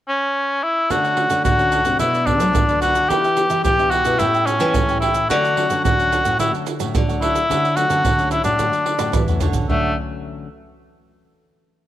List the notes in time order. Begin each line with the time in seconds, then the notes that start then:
0.08 C#4
0.63 E4
0.90 D3 A3 C#4 D4 F#4 A4 C#5 F#5, pandeiro, shaker, surdo
1.04 A4 C#5 F#5, pandeiro, shaker
1.17 A3 C#4 F#4, muted cavaquinho stroke, pandeiro
1.30 D3 A4 C#5 F#5, pandeiro, shaker
1.44 A2 D3 F#4, pandeiro, shaker, surdo
1.59 A3 C#4 F#4 A4 C#5 F#5, pandeiro, shaker
1.72 D4 A4 C#5 F#5, pandeiro, shaker
1.85 C3 F#3 A3 D4 C#5 F#5, pandeiro, shaker
1.99 B2 D4 E4 A4 B4 D5, pandeiro, shaker, surdo
2.14 A4 B4 D5, pandeiro, shaker
2.26 D4, muted cavaquinho stroke, pandeiro, surdo
2.40 F#3 A3 D4 A4 B4 D5, pandeiro, shaker
2.55 F#2 D3, pandeiro, shaker, surdo
2.69 F#3 A3 D4 A4 B4 D5, pandeiro, shaker
2.81 D4 F#4 A4 B4 D5, pandeiro, shaker
2.95 A4 B4 D5, pandeiro, shaker
3.09 E3 B3 D4 G4 B4 E5, pandeiro, shaker, surdo
3.24 G4 B4 E5, pandeiro, shaker
3.37 B3 D4 G4, muted cavaquinho stroke, pandeiro, shaker
3.50 E3 G4 B4 E5, pandeiro, shaker
3.64 B2 E3 G4, pandeiro, shaker, surdo
3.79 B3 D4 G4 B4 E5, pandeiro, shaker
3.91 D4 F#4 G4 B4 E5, pandeiro
4.05 B2 G3 C#4 E4 G4 B4 E5, pandeiro, shaker
4.19 A2 E4 G4 A4 C#5 G5, pandeiro, shaker, surdo
4.34 A4 C#5 G5, pandeiro, shaker
4.46 C#4, pandeiro, shaker
4.60 E3 G3 C#4 E4 A4 C#5 G5, pandeiro, shaker
4.74 A2 E3, pandeiro, shaker, surdo
4.89 G3 C#4 E4 A4 C#5 G5, pandeiro, shaker
5.00 E4 G4 A4 C#5 G5, pandeiro
5.14 C#5 G5, pandeiro, shaker
5.30 D3 F#3 A3 C#4 D4 F#4 A4 C#5 F#5, pandeiro, shaker, surdo
5.45 A4 F#5, pandeiro, shaker
5.57 F#3 A3 C#4, pandeiro
5.70 D3 A4 C#5 F#5, pandeiro, shaker
5.84 A2 D3 F#4, pandeiro, shaker, surdo
5.99 F#3 A3 C#4 A4 C#5 F#5, pandeiro, shaker
6.12 D4 A4 C#5 F#5, pandeiro, shaker
6.25 A2 F#3 A3 C#4 A4 C#5 F#5, pandeiro, shaker
6.40 D3 F#3 A3 C#4 D4 E4 A4 C#5 F#5, pandeiro, shaker, surdo
6.54 A4 C#5 F#5, pandeiro, shaker
6.66 muted cavaquinho stroke, pandeiro, shaker
6.80 A2 F#3 A3 C#4 A4 C#5 F#5, pandeiro, shaker
6.95 A2 D3, pandeiro, shaker, surdo
7.09 F#3 A3 C#4 A4 C#5 F#5, pandeiro, shaker
7.21 D4 E4 A4 C#5 F#5, pandeiro
7.35 A4 F#5, pandeiro, shaker
7.49 D3 F#3 A3 C#4 D4 A4 C#5 F#5, pandeiro, shaker, surdo
7.64 A4 C#5 F#5, pandeiro, shaker
7.76 F#3 A3 C#4 F#4, muted cavaquinho stroke, pandeiro, shaker
7.89 D3 A4 C#5 F#5, pandeiro, shaker
8.05 A2 D3, pandeiro, shaker, surdo
8.19 F#3 A3 C#4 A4 C#5 F#5, pandeiro, shaker
8.31 D4 E4 A4 C#5 F#5, pandeiro, shaker
8.44 A2 F#3 A3 C#4 D4 A4 F#5, pandeiro, shaker
8.59 D3 F#3 A3 D4 A4 C#5 F#5, pandeiro, shaker, surdo
8.73 A4 C#5 F#5, pandeiro, shaker
8.86 muted cavaquinho stroke, pandeiro
8.99 A2 F#3 A3 C#4 A4 C#5 F#5, pandeiro, tamborim, shaker
9.14 A2 E3, pandeiro, tamborim, shaker, surdo
9.28 F#3 A3 C#4 A4 C#5 F#5, surdo, pandeiro, shaker
9.41 D3 D4 A4 C#5 F#5, surdo, pandeiro, shaker
9.53 A4 C#5 F#5, pandeiro, shaker, surdo
9.68 D3 F#3 A3 C#4 D4 A4 C#5 F#5, surdo